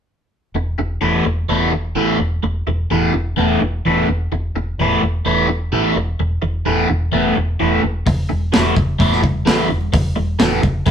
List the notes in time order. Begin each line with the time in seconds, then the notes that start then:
0.54 E1, muted overdriven electric guitar stroke
0.78 E1, muted overdriven electric guitar stroke
1.01 E1 E3 A3 B3 E4
1.25 E1, muted overdriven electric guitar stroke
1.49 E1 E3 A3 B3 E4
1.73 muted overdriven electric guitar stroke
1.96 A1 E3 A3 B3 E4
2.19 E1, muted overdriven electric guitar stroke
2.43 E1, muted overdriven electric guitar stroke
2.66 E1, muted overdriven electric guitar stroke
2.90 E1 E3 A3 B3 E4
3.14 E1, muted overdriven electric guitar stroke
3.37 E1 E3 A3 B3 E4
3.61 E1, muted overdriven electric guitar stroke
3.85 E1 E3 A3 B3 E4
4.08 E1, muted overdriven electric guitar stroke
4.31 E1, muted overdriven electric guitar stroke
4.55 E1, muted overdriven electric guitar stroke
4.78 E1 E3 A3 B3 E4
5.02 E1, muted overdriven electric guitar stroke
5.25 E1 E3 A3 B3 E4
5.49 muted overdriven electric guitar stroke
5.72 A1 E3 A3 B3 E4
5.96 E1, muted overdriven electric guitar stroke
6.19 E1, muted overdriven electric guitar stroke
6.42 E1, muted overdriven electric guitar stroke
6.66 E1 E3 A3 B3 E4
6.89 E1, muted overdriven electric guitar stroke
7.12 E1 E3 A3 B3 E4
7.37 E1, muted overdriven electric guitar stroke
7.60 E1 E3 A3 B3 E4
7.83 E1, muted overdriven electric guitar stroke
8.06 E1, muted overdriven electric guitar stroke, kick, open hi-hat, low conga
8.29 E1, muted overdriven electric guitar stroke, high conga
8.53 E1 E3 A3 B3 E4, snare, open hi-hat
8.76 E1, muted overdriven electric guitar stroke, kick, low conga
8.99 E1 E3 A3 B3 E4, kick, open hi-hat
9.12 snare
9.23 muted overdriven electric guitar stroke, kick, high conga
9.45 A1 E3 A3 B3 E4, snare, open hi-hat
9.57 high conga
9.69 E1, muted overdriven electric guitar stroke, low conga
9.81 high conga
9.92 E1, muted overdriven electric guitar stroke, kick, open hi-hat, low conga
10.16 E1, muted overdriven electric guitar stroke, high conga
10.39 E1 E3 A3 B3 E4, snare, open hi-hat
10.62 E1, muted overdriven electric guitar stroke, kick, low conga
10.86 E1 E3 A3 B3 E4, kick, open hi-hat